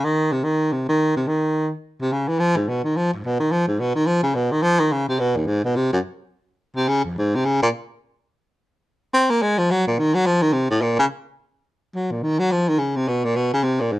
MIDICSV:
0, 0, Header, 1, 2, 480
1, 0, Start_track
1, 0, Tempo, 281030
1, 217, Time_signature, 4, 2, 24, 8
1, 23900, End_track
2, 0, Start_track
2, 0, Title_t, "Baritone saxophone"
2, 0, Program_c, 0, 67
2, 76, Note_on_c, 0, 51, 85
2, 552, Note_on_c, 0, 48, 73
2, 578, Note_off_c, 0, 51, 0
2, 752, Note_on_c, 0, 51, 85
2, 778, Note_off_c, 0, 48, 0
2, 1238, Note_on_c, 0, 48, 70
2, 1263, Note_off_c, 0, 51, 0
2, 1497, Note_off_c, 0, 48, 0
2, 1517, Note_on_c, 0, 51, 91
2, 1939, Note_off_c, 0, 51, 0
2, 1989, Note_on_c, 0, 48, 77
2, 2184, Note_on_c, 0, 51, 96
2, 2209, Note_off_c, 0, 48, 0
2, 2929, Note_off_c, 0, 51, 0
2, 3441, Note_on_c, 0, 48, 82
2, 3630, Note_on_c, 0, 49, 75
2, 3656, Note_off_c, 0, 48, 0
2, 3900, Note_on_c, 0, 52, 89
2, 3925, Note_off_c, 0, 49, 0
2, 4088, Note_on_c, 0, 53, 105
2, 4114, Note_off_c, 0, 52, 0
2, 4384, Note_on_c, 0, 44, 80
2, 4410, Note_off_c, 0, 53, 0
2, 4590, Note_on_c, 0, 47, 75
2, 4616, Note_off_c, 0, 44, 0
2, 4842, Note_off_c, 0, 47, 0
2, 4852, Note_on_c, 0, 51, 82
2, 5065, Note_on_c, 0, 53, 95
2, 5090, Note_off_c, 0, 51, 0
2, 5328, Note_off_c, 0, 53, 0
2, 5355, Note_on_c, 0, 44, 54
2, 5541, Note_on_c, 0, 47, 82
2, 5567, Note_off_c, 0, 44, 0
2, 5793, Note_off_c, 0, 47, 0
2, 5803, Note_on_c, 0, 51, 93
2, 6006, Note_on_c, 0, 53, 105
2, 6032, Note_off_c, 0, 51, 0
2, 6273, Note_off_c, 0, 53, 0
2, 6283, Note_on_c, 0, 44, 72
2, 6491, Note_on_c, 0, 47, 83
2, 6516, Note_off_c, 0, 44, 0
2, 6741, Note_off_c, 0, 47, 0
2, 6752, Note_on_c, 0, 51, 92
2, 6942, Note_on_c, 0, 53, 105
2, 6968, Note_off_c, 0, 51, 0
2, 7214, Note_off_c, 0, 53, 0
2, 7224, Note_on_c, 0, 49, 91
2, 7430, Note_on_c, 0, 47, 83
2, 7456, Note_off_c, 0, 49, 0
2, 7714, Note_on_c, 0, 51, 98
2, 7740, Note_off_c, 0, 47, 0
2, 7898, Note_on_c, 0, 53, 114
2, 7923, Note_off_c, 0, 51, 0
2, 8191, Note_on_c, 0, 51, 97
2, 8217, Note_off_c, 0, 53, 0
2, 8403, Note_on_c, 0, 49, 81
2, 8429, Note_off_c, 0, 51, 0
2, 8675, Note_off_c, 0, 49, 0
2, 8687, Note_on_c, 0, 48, 84
2, 8876, Note_on_c, 0, 47, 91
2, 8902, Note_off_c, 0, 48, 0
2, 9166, Note_on_c, 0, 39, 62
2, 9192, Note_off_c, 0, 47, 0
2, 9338, Note_on_c, 0, 44, 84
2, 9364, Note_off_c, 0, 39, 0
2, 9622, Note_off_c, 0, 44, 0
2, 9643, Note_on_c, 0, 47, 88
2, 9833, Note_on_c, 0, 48, 101
2, 9858, Note_off_c, 0, 47, 0
2, 10109, Note_off_c, 0, 48, 0
2, 10128, Note_on_c, 0, 42, 82
2, 10232, Note_off_c, 0, 42, 0
2, 11554, Note_on_c, 0, 48, 95
2, 11759, Note_on_c, 0, 49, 110
2, 11785, Note_off_c, 0, 48, 0
2, 12031, Note_off_c, 0, 49, 0
2, 12039, Note_on_c, 0, 41, 52
2, 12264, Note_on_c, 0, 44, 86
2, 12290, Note_off_c, 0, 41, 0
2, 12558, Note_on_c, 0, 48, 87
2, 12583, Note_off_c, 0, 44, 0
2, 12731, Note_on_c, 0, 49, 98
2, 12757, Note_off_c, 0, 48, 0
2, 12997, Note_off_c, 0, 49, 0
2, 13026, Note_on_c, 0, 46, 94
2, 13124, Note_off_c, 0, 46, 0
2, 15609, Note_on_c, 0, 60, 109
2, 15889, Note_on_c, 0, 58, 97
2, 15915, Note_off_c, 0, 60, 0
2, 16093, Note_on_c, 0, 56, 102
2, 16118, Note_off_c, 0, 58, 0
2, 16368, Note_on_c, 0, 53, 96
2, 16394, Note_off_c, 0, 56, 0
2, 16585, Note_on_c, 0, 54, 106
2, 16611, Note_off_c, 0, 53, 0
2, 16842, Note_off_c, 0, 54, 0
2, 16866, Note_on_c, 0, 46, 76
2, 17056, Note_on_c, 0, 51, 89
2, 17081, Note_off_c, 0, 46, 0
2, 17327, Note_on_c, 0, 54, 106
2, 17353, Note_off_c, 0, 51, 0
2, 17530, Note_on_c, 0, 53, 100
2, 17556, Note_off_c, 0, 54, 0
2, 17800, Note_on_c, 0, 51, 101
2, 17826, Note_off_c, 0, 53, 0
2, 17986, Note_on_c, 0, 48, 88
2, 18012, Note_off_c, 0, 51, 0
2, 18263, Note_off_c, 0, 48, 0
2, 18290, Note_on_c, 0, 45, 93
2, 18477, Note_on_c, 0, 46, 85
2, 18503, Note_off_c, 0, 45, 0
2, 18749, Note_off_c, 0, 46, 0
2, 18767, Note_on_c, 0, 49, 103
2, 18870, Note_off_c, 0, 49, 0
2, 20414, Note_on_c, 0, 54, 72
2, 20690, Note_on_c, 0, 46, 66
2, 20715, Note_off_c, 0, 54, 0
2, 20878, Note_on_c, 0, 51, 82
2, 20904, Note_off_c, 0, 46, 0
2, 21164, Note_on_c, 0, 54, 98
2, 21189, Note_off_c, 0, 51, 0
2, 21381, Note_on_c, 0, 53, 85
2, 21406, Note_off_c, 0, 54, 0
2, 21665, Note_on_c, 0, 51, 91
2, 21690, Note_off_c, 0, 53, 0
2, 21843, Note_on_c, 0, 49, 75
2, 21869, Note_off_c, 0, 51, 0
2, 22142, Note_on_c, 0, 48, 80
2, 22167, Note_off_c, 0, 49, 0
2, 22340, Note_on_c, 0, 47, 72
2, 22366, Note_off_c, 0, 48, 0
2, 22619, Note_on_c, 0, 46, 82
2, 22645, Note_off_c, 0, 47, 0
2, 22817, Note_on_c, 0, 47, 71
2, 22843, Note_off_c, 0, 46, 0
2, 23084, Note_off_c, 0, 47, 0
2, 23117, Note_on_c, 0, 49, 85
2, 23291, Note_on_c, 0, 48, 85
2, 23317, Note_off_c, 0, 49, 0
2, 23582, Note_on_c, 0, 46, 78
2, 23608, Note_off_c, 0, 48, 0
2, 23779, Note_on_c, 0, 44, 64
2, 23805, Note_off_c, 0, 46, 0
2, 23900, Note_off_c, 0, 44, 0
2, 23900, End_track
0, 0, End_of_file